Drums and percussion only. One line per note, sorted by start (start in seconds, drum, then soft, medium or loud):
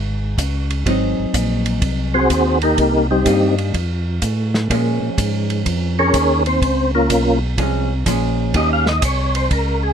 0.38 kick soft
0.38 hi-hat pedal medium
0.38 ride medium
0.70 ride soft
0.86 kick soft
0.86 ride medium
1.34 kick soft
1.34 hi-hat pedal medium
1.34 ride medium
1.66 ride soft
1.82 kick soft
1.82 ride medium
2.30 kick soft
2.30 hi-hat pedal medium
2.30 ride medium
2.62 ride soft
2.78 kick soft
2.78 ride medium
3.26 kick soft
3.26 hi-hat pedal soft
3.26 ride medium
3.58 ride soft
3.74 kick soft
3.74 ride medium
4.22 kick soft
4.22 hi-hat pedal medium
4.22 ride medium
4.54 snare soft
4.70 kick soft
4.70 ride medium
5.18 kick soft
5.18 hi-hat pedal medium
5.18 ride medium
5.50 ride soft
5.66 kick soft
5.66 ride medium
6.14 kick soft
6.14 hi-hat pedal medium
6.14 ride medium
6.46 ride soft
6.62 kick soft
6.62 ride medium
7.10 kick soft
7.10 hi-hat pedal medium
7.10 ride medium
7.58 kick soft
7.58 ride medium
8.06 kick soft
8.06 hi-hat pedal medium
8.06 ride medium
8.54 kick soft
8.54 ride medium
8.86 snare soft
9.02 kick soft
9.02 hi-hat pedal medium
9.02 ride medium
9.35 ride soft
9.51 kick soft
9.51 ride medium